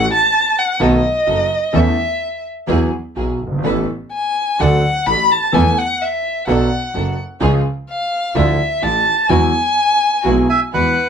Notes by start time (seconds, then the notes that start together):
0.11 A5
0.59 F#5
0.79 B1 B2 D#3 A3 B3 D#4 F#4 A4 D#5
1.26 F#1 F#2 B3 D#4 A4
1.73 E2 E3 A3 C#4 E4 A4 E5
2.67 E2 E3 F#3 B3 E4 F#4 G#4
3.16 B1 B2 E4 F#4 G#4
3.41 G1
3.47 F#1
3.52 G1
3.58 G#1
3.64 A1 A2 E3 B3 C#4 A4 B4
4.12 G#5
4.59 D2 D3 F#3 A3 D4 F#4 A4 F#5
5.06 A1 A2 D4 F#4 A4 B5
5.31 A5
5.52 E2 E3 A3 B3 E4 A4 G#5
5.78 F#5
6.02 E5
6.47 B1 B2 F#3 B3 D4 A4 F#5
6.94 F#1 F#2 B3 D4 A4
7.40 C#2 C#3 F3 G#3 C#4 F4 G#4
7.89 F5
8.34 D2 D3 F3 D4 E4 F4 A4 E5
8.81 A1 A2 D4 E4 F4 A5
9.28 E2 E3 F#3 G#3 B3 E4 F#4 G#4 G#5
10.23 B1 B2 F#3 G#3 B3 E4 F#4 G#4
10.50 E5 G#5
10.72 E2 E3 G#3 E4 F#4 B4 F#5